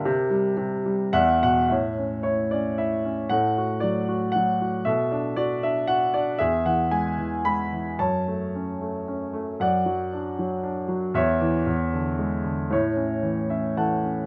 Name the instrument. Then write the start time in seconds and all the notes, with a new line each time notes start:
grand piano
Already playing: D4 A#4 D5
0.05 C3
0.30 G3
0.57 C3
0.86 G3
1.13 E2 D5 E5 F#5
1.43 B2 F#5
1.69 A2 C#5 E5
1.98 C#4
2.23 E4 C#5
2.51 C#4 D5
2.78 E4 E5
3.05 C#4
3.29 A2 A4 F#5
3.58 F#4
3.80 F#3 D5
4.08 F#4
4.32 F#5
4.36 F#3
4.62 F#4
4.85 B2 A4 E5
5.12 D4
5.36 F#4 D5
5.63 D4 E5
5.87 F#4 F#5
6.14 D4 D5
6.38 E2 G#4 E5
6.65 E3 F#5
6.91 G#3 G#5
7.18 E3
7.45 G#3 B5
7.72 E3
7.99 F#2 C#5 A5
8.28 A3
8.55 C#4
8.81 A3
9.08 C#4
9.33 A3
9.60 F#2 D5 F#5
9.86 F#3
10.13 D4
10.39 F#3
10.63 D4
10.88 F#3
11.14 E2 C#5 E5
11.41 E3
11.66 E2
11.94 D3
12.19 G#3
12.44 D3
12.71 A2 E4 C#5
12.96 C#4
13.23 E3
13.50 C#4 E5
13.77 E3 A4 F#5 A5
14.04 C#4